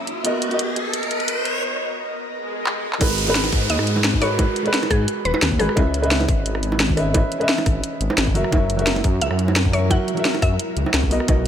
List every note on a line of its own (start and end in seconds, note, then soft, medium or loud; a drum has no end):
0.00 riser medium
0.07 2.98 B3 medium
0.07 2.98 A#4 medium
0.07 2.98 D#5 medium
0.07 closed hi-hat medium
0.24 0.48 B3 medium
0.24 0.49 F#4 medium
0.24 0.49 A#4 medium
0.24 0.50 D#5 medium
0.24 closed hi-hat medium
0.42 closed hi-hat medium
0.49 1.60 B3 medium
0.49 1.61 F#4 medium
0.49 1.61 A#4 medium
0.49 closed hi-hat soft
0.54 1.62 D#5 medium
0.59 closed hi-hat medium
0.76 closed hi-hat medium
0.94 closed hi-hat loud
1.03 closed hi-hat soft
1.11 closed hi-hat medium
1.20 closed hi-hat soft
1.28 closed hi-hat loud
1.45 closed hi-hat medium
2.32 swell medium
2.66 clap loud
2.93 clap medium
2.99 3.51 G#1 loud
2.99 3.23 G#3 medium
2.99 3.25 F#4 medium
2.99 5.74 F#4 medium
2.99 3.25 A#4 medium
2.99 3.26 B4 medium
2.99 kick loud
2.99 closed hi-hat medium
2.99 crash loud
2.99 downlifter medium
2.99 high bongo medium
3.18 closed hi-hat medium
3.25 4.19 G#3 medium
3.25 4.20 F#4 medium
3.25 4.20 A#4 medium
3.25 closed hi-hat soft
3.30 4.21 B4 medium
3.35 snare loud
3.35 closed hi-hat loud
3.44 closed hi-hat soft
3.44 high bongo medium
3.52 3.68 G#2 loud
3.52 kick loud
3.52 open hi-hat medium
3.70 3.78 D#2 loud
3.70 3.91 D#5 medium
3.70 closed hi-hat medium
3.79 4.47 G#2 medium
3.79 cross-stick medium
3.87 closed hi-hat medium
3.96 high bongo medium
4.04 snare loud
4.04 closed hi-hat loud
4.14 kick medium
4.20 4.36 G#3 medium
4.20 4.37 F#4 medium
4.20 4.37 A#4 medium
4.20 4.37 B4 loud
4.20 4.56 C#5 loud
4.20 cross-stick soft
4.20 open hi-hat medium
4.37 4.61 G#3 medium
4.37 4.63 F#4 medium
4.37 4.63 A#4 medium
4.37 4.64 B4 loud
4.37 kick loud
4.37 closed hi-hat medium
4.37 high bongo medium
4.56 closed hi-hat medium
4.63 5.57 G#3 medium
4.63 5.57 F#4 medium
4.63 5.58 A#4 medium
4.63 closed hi-hat soft
4.67 5.59 B4 medium
4.74 snare loud
4.74 closed hi-hat loud
4.83 cross-stick soft
4.83 closed hi-hat soft
4.83 high bongo medium
4.91 5.06 G#2 loud
4.91 5.12 G#4 medium
4.91 kick loud
4.91 cross-stick soft
4.91 open hi-hat medium
5.08 closed hi-hat medium
5.25 5.33 D#1 medium
5.25 5.31 B4 medium
5.25 closed hi-hat medium
5.34 5.40 B4 medium
5.34 high bongo loud
5.42 5.61 D#2 loud
5.42 snare loud
5.42 closed hi-hat loud
5.52 kick medium
5.58 5.68 G#1 loud
5.58 5.74 G#3 medium
5.58 5.75 F#4 medium
5.58 5.80 G#4 medium
5.58 5.75 A#4 medium
5.58 5.75 B4 loud
5.58 open hi-hat medium
5.69 cross-stick medium
5.75 6.27 C#2 loud
5.75 8.33 E3 medium
5.75 5.99 C#4 medium
5.75 6.01 B4 medium
5.75 6.01 D#5 medium
5.75 6.02 E5 loud
5.75 kick loud
5.75 closed hi-hat medium
5.75 high bongo medium
5.94 closed hi-hat medium
6.01 6.94 C#4 medium
6.01 6.95 B4 medium
6.01 6.96 D#5 medium
6.01 closed hi-hat soft
6.06 6.97 E5 medium
6.11 snare loud
6.11 closed hi-hat medium
6.20 closed hi-hat soft
6.20 high bongo medium
6.28 6.44 G#1 medium
6.28 kick loud
6.28 open hi-hat medium
6.46 6.54 G#1 loud
6.46 closed hi-hat medium
6.55 7.22 G#1 medium
6.55 cross-stick medium
6.63 closed hi-hat medium
6.72 high bongo medium
6.80 snare loud
6.80 closed hi-hat medium
6.89 kick medium
6.96 7.12 C#4 medium
6.96 7.12 B4 medium
6.96 7.13 D#5 medium
6.96 7.13 E5 loud
6.96 cross-stick soft
6.96 open hi-hat medium
7.13 7.37 C#4 medium
7.13 7.39 B4 medium
7.13 7.39 D#5 medium
7.13 7.39 E5 loud
7.13 kick loud
7.13 closed hi-hat medium
7.13 high bongo loud
7.32 closed hi-hat medium
7.39 8.33 C#4 medium
7.39 8.33 B4 medium
7.39 8.34 D#5 medium
7.39 closed hi-hat soft
7.43 8.35 E5 medium
7.49 snare loud
7.49 closed hi-hat medium
7.58 cross-stick soft
7.58 closed hi-hat soft
7.58 high bongo medium
7.66 7.82 G#1 medium
7.66 kick loud
7.66 cross-stick soft
7.66 open hi-hat medium
7.84 closed hi-hat medium
8.01 8.09 G#1 loud
8.01 closed hi-hat medium
8.10 high bongo loud
8.18 8.37 G#1 loud
8.18 snare loud
8.18 closed hi-hat medium
8.27 kick medium
8.34 8.44 F#1 loud
8.34 8.50 F#3 medium
8.34 11.08 F#3 medium
8.34 11.08 E4 medium
8.34 8.50 F#4 medium
8.34 11.08 A#4 medium
8.34 8.51 A#4 medium
8.34 8.51 E5 medium
8.34 open hi-hat medium
8.44 cross-stick medium
8.51 9.03 F#1 loud
8.51 8.75 F#3 medium
8.51 8.77 F#4 medium
8.51 8.77 A#4 medium
8.51 8.77 E5 medium
8.51 kick loud
8.51 closed hi-hat medium
8.51 high bongo medium
8.70 closed hi-hat medium
8.77 9.70 F#3 medium
8.77 9.71 F#4 medium
8.77 9.72 A#4 medium
8.77 closed hi-hat soft
8.81 9.73 E5 medium
8.87 snare loud
8.87 closed hi-hat medium
8.96 closed hi-hat soft
8.96 high bongo medium
9.04 9.20 F#2 loud
9.04 kick loud
9.04 open hi-hat medium
9.21 9.30 C#2 loud
9.21 9.43 E5 medium
9.21 closed hi-hat medium
9.31 9.98 F#2 medium
9.31 cross-stick medium
9.39 closed hi-hat medium
9.48 high bongo medium
9.56 snare loud
9.56 closed hi-hat medium
9.65 kick medium
9.72 9.88 F#3 medium
9.72 9.88 F#4 medium
9.72 9.89 A#4 medium
9.72 10.08 C#5 loud
9.72 9.89 E5 medium
9.72 cross-stick soft
9.72 open hi-hat medium
9.89 10.13 F#3 medium
9.89 10.15 F#4 medium
9.89 10.15 A#4 medium
9.89 10.15 E5 loud
9.89 10.12 F#5 medium
9.89 kick loud
9.89 closed hi-hat medium
9.89 high bongo medium
10.08 closed hi-hat medium
10.15 11.08 F#3 medium
10.15 11.09 F#4 medium
10.15 11.10 A#4 medium
10.15 closed hi-hat soft
10.19 11.11 E5 medium
10.25 snare loud
10.25 closed hi-hat medium
10.34 cross-stick soft
10.34 closed hi-hat soft
10.34 high bongo medium
10.42 10.58 F#2 loud
10.42 10.91 E5 medium
10.42 kick loud
10.42 cross-stick soft
10.42 open hi-hat medium
10.59 closed hi-hat medium
10.77 10.85 C#2 medium
10.77 closed hi-hat medium
10.86 high bongo medium
10.94 11.13 C#2 loud
10.94 snare loud
10.94 closed hi-hat medium
11.03 kick medium
11.10 11.19 B1 loud
11.10 11.26 B3 medium
11.10 11.48 D#4 medium
11.10 11.26 F#4 medium
11.10 11.27 A#4 medium
11.10 11.27 D#5 loud
11.10 open hi-hat medium
11.20 cross-stick soft
11.27 11.48 B1 loud
11.27 11.48 B3 medium
11.27 11.48 F#4 medium
11.27 11.48 A#4 medium
11.27 11.48 D#5 loud
11.27 kick loud
11.27 closed hi-hat loud
11.27 high bongo medium